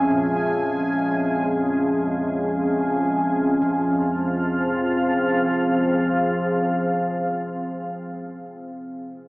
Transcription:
0.00 3.61 F2 medium
0.00 3.73 G#3 medium
0.00 3.62 C#4 medium
0.00 3.62 G#4 medium
0.00 3.62 E5 medium
0.00 3.64 G#5 medium
0.11 7.46 A#2 medium
3.61 7.70 F2 medium
3.61 7.69 F3 medium
3.61 7.70 F3 medium
3.61 7.71 C4 medium
3.82 7.90 G#4 medium
3.99 8.07 F5 medium

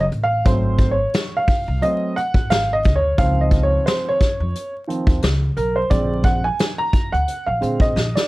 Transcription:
0.01 0.06 D#5 medium
0.12 0.40 A1 medium
0.12 closed hi-hat medium
0.23 0.46 F5 loud
0.45 1.03 G#1 loud
0.45 0.92 F#3 medium
0.45 0.93 A3 medium
0.45 0.93 C4 medium
0.45 0.92 C5 medium
0.45 kick loud
0.45 closed hi-hat medium
0.78 kick medium
0.78 closed hi-hat medium
0.91 1.38 C#5 medium
1.14 snare loud
1.14 closed hi-hat medium
1.37 1.83 F5 medium
1.48 kick medium
1.48 open hi-hat soft
1.68 1.80 C2 medium
1.82 2.12 F#3 medium
1.82 2.13 A3 soft
1.82 2.13 C4 medium
1.82 2.17 D#5 loud
1.82 closed hi-hat medium
2.16 2.51 F#5 loud
2.16 closed hi-hat medium
2.34 2.47 A1 medium
2.34 kick medium
2.34 closed hi-hat soft
2.50 2.87 G#1 medium
2.50 2.73 F5 loud
2.50 snare loud
2.50 closed hi-hat medium
2.73 2.96 D#5 loud
2.84 3.14 D2 medium
2.84 kick medium
2.84 closed hi-hat medium
2.96 3.19 C#5 medium
3.18 3.76 C#2 loud
3.18 4.16 D#3 medium
3.18 4.16 F3 medium
3.18 4.17 C4 medium
3.18 3.42 F5 loud
3.18 kick loud
3.18 closed hi-hat medium
3.41 3.64 D#5 medium
3.51 kick medium
3.51 closed hi-hat medium
3.63 3.87 C#5 medium
3.86 4.10 C5 medium
3.86 snare loud
3.86 closed hi-hat medium
4.09 4.73 C#5 medium
4.21 kick medium
4.21 snare soft
4.21 closed hi-hat medium
4.40 4.52 F2 medium
4.55 closed hi-hat loud
4.88 5.19 D#3 medium
4.88 5.19 F3 soft
4.88 5.19 C4 medium
4.88 closed hi-hat medium
5.07 5.20 D#2 medium
5.07 kick medium
5.07 closed hi-hat soft
5.22 5.51 C#2 medium
5.22 snare loud
5.22 closed hi-hat medium
5.57 5.85 B1 medium
5.57 5.77 A#4 medium
5.57 closed hi-hat medium
5.76 5.91 C5 medium
5.90 6.48 A#1 loud
5.90 6.38 D3 medium
5.90 6.38 G#3 medium
5.90 6.38 C4 medium
5.90 6.26 D5 medium
5.90 kick loud
5.90 closed hi-hat medium
6.23 6.45 F#5 loud
6.23 kick medium
6.23 closed hi-hat medium
6.44 6.80 G#5 loud
6.59 snare loud
6.59 closed hi-hat medium
6.78 7.10 A#5 loud
6.93 kick medium
6.93 closed hi-hat medium
7.12 7.25 D2 medium
7.12 7.48 F#5 medium
7.12 closed hi-hat soft
7.28 closed hi-hat loud
7.46 7.59 A#1 medium
7.46 7.82 F5 medium
7.61 7.90 A#2 medium
7.61 7.92 D3 medium
7.61 7.92 G#3 soft
7.61 7.92 C4 medium
7.61 closed hi-hat medium
7.80 8.16 D#5 medium
7.80 kick medium
7.80 closed hi-hat soft
7.96 8.12 A#1 loud
7.96 snare medium
8.15 8.28 D5 medium
8.15 snare medium

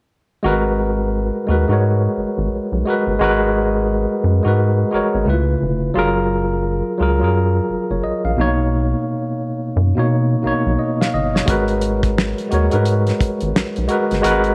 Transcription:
0.43 1.30 G#1 loud
0.43 1.41 G#3 medium
0.43 1.42 F#4 medium
0.43 1.43 A#4 medium
0.48 1.44 B4 loud
1.47 1.65 D#2 medium
1.47 1.67 G#3 medium
1.47 1.68 F#4 medium
1.47 1.68 A#4 medium
1.51 1.69 B4 medium
1.68 2.08 G#2 medium
1.68 2.79 G#3 medium
1.68 2.80 F#4 medium
1.68 2.80 A#4 medium
1.73 2.81 C#5 medium
2.17 2.26 G#1 soft
2.38 2.49 G#1 medium
2.52 2.60 B1 soft
2.72 2.83 B1 medium
2.86 3.18 G#3 medium
2.86 3.19 F#4 medium
2.86 3.20 A#4 medium
2.90 3.20 B4 medium
3.07 3.18 G1 medium
3.19 4.06 G#1 loud
3.19 4.34 G#3 loud
3.19 4.35 F#4 medium
3.19 4.35 A#4 medium
3.24 4.36 B4 loud
4.24 4.41 F#2 medium
4.43 4.84 G#2 medium
4.43 4.89 G#3 medium
4.43 4.90 F#4 medium
4.43 4.90 A#4 medium
4.48 4.91 B4 medium
4.91 5.02 G#1 soft
4.91 5.26 G#3 medium
4.91 5.27 F#4 medium
4.91 5.28 A#4 medium
4.95 5.28 C#5 medium
5.15 5.25 G#1 medium
5.25 5.56 C#2 medium
5.25 5.91 C#3 medium
5.25 5.92 A3 medium
5.25 5.92 E4 medium
5.25 5.93 F4 medium
5.30 5.94 B4 medium
5.62 5.90 F1 medium
5.94 6.82 F#1 loud
5.94 6.93 F#3 loud
5.94 6.94 F4 medium
5.94 6.94 G#4 medium
5.99 6.95 A#4 loud
6.98 7.23 C#2 medium
6.98 7.18 F#3 medium
6.98 7.19 F4 medium
6.98 7.20 G#4 medium
7.02 7.20 A#4 medium
7.20 7.60 F#2 medium
7.20 8.30 F#3 medium
7.20 8.31 F4 medium
7.20 8.32 G#4 medium
7.24 8.33 A#4 medium
7.70 7.78 F#1 soft
7.91 8.01 F#1 medium
7.91 8.03 C#5 soft
8.04 8.23 D#5 medium
8.25 8.35 A#1 medium
8.25 8.57 F5 medium
8.37 8.94 B1 medium
8.37 9.67 B2 medium
8.37 9.68 A#3 medium
8.37 9.69 D#4 medium
8.41 9.70 C#5 medium
9.76 9.93 F#2 medium
9.95 10.41 B2 medium
9.95 10.36 B2 medium
9.95 10.42 A#3 medium
9.95 10.42 D#4 medium
9.99 10.43 C#5 medium
10.43 10.53 B1 soft
10.43 11.41 B2 medium
10.43 11.42 A#3 medium
10.43 11.43 D#4 medium
10.47 10.80 C#5 medium
10.66 10.77 B1 medium
10.79 10.99 D#5 medium
11.01 11.13 F5 medium
11.01 snare medium
11.14 11.42 G1 medium
11.14 11.33 D#5 medium
11.35 11.67 C#5 medium
11.35 snare medium
11.46 12.34 G#1 loud
11.46 12.45 G#3 loud
11.46 12.45 F#4 medium
11.46 12.46 A#4 medium
11.46 kick loud
11.46 closed hi-hat medium
11.50 12.47 B4 loud
11.68 closed hi-hat soft
11.81 closed hi-hat medium
12.03 kick medium
12.03 closed hi-hat soft
12.18 finger snap medium
12.18 snare loud
12.38 closed hi-hat soft
12.49 12.69 D#2 medium
12.49 12.69 G#3 medium
12.49 12.71 F#4 medium
12.49 12.71 A#4 medium
12.49 closed hi-hat soft
12.54 12.72 C#5 medium
12.70 13.12 G#2 medium
12.70 13.82 G#3 medium
12.70 13.82 F#4 medium
12.70 13.83 A#4 medium
12.70 closed hi-hat soft
12.75 13.84 B4 medium
12.86 closed hi-hat medium
13.07 snare soft
13.07 closed hi-hat soft
13.21 13.29 G#1 soft
13.21 kick medium
13.21 closed hi-hat medium
13.41 13.53 G#1 medium
13.41 closed hi-hat soft
13.56 finger snap medium
13.56 snare loud
13.76 13.88 B1 medium
13.76 closed hi-hat soft
13.87 14.21 G#3 medium
13.87 14.21 F#4 medium
13.87 14.22 A#4 medium
13.87 closed hi-hat medium
13.92 14.23 B4 medium
14.11 14.22 G1 medium
14.11 snare soft
14.11 closed hi-hat soft
14.22 14.55 G#1 loud
14.22 14.55 G#3 loud
14.22 14.55 F#4 medium
14.22 14.55 A#4 medium
14.22 closed hi-hat medium
14.26 14.55 B4 loud
14.44 closed hi-hat soft

